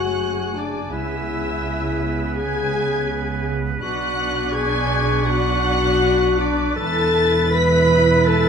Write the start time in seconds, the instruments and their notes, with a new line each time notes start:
Already playing: double bass section F#1, cello section F#2, viola section A3 G#4, french horn section F#4, clarinet F#4, oboe C#5, violin section F#5 F#6, flute G#5
0.54 clarinet D4, french horn section D4, violin section D5 D6
0.91 double bass section C#2, cello section C#3, viola section B3, clarinet E4, french horn section E4, oboe B4, violin section E5 E6
2.37 clarinet G#4, french horn section G#4, violin section G#5 G#6
3.81 double bass section B1, cello section B2, viola section D4 D5, clarinet F#4, french horn section F#4, violin section F#5 F#6, flute C#6
4.52 clarinet G#4, french horn section G#4, violin section G#5 G#6
5.25 clarinet F#4, french horn section F#4, violin section F#5 F#6
6.39 clarinet D4, french horn section D4, violin section D5 D6
6.76 double bass section E1, cello section E2, viola section E4 B4, clarinet A4, french horn section A4, oboe B4, violin section A5 A6, flute B5
7.50 clarinet B4, french horn section B4, violin section B5 B6
8.25 clarinet A4, french horn section A4, violin section A5 A6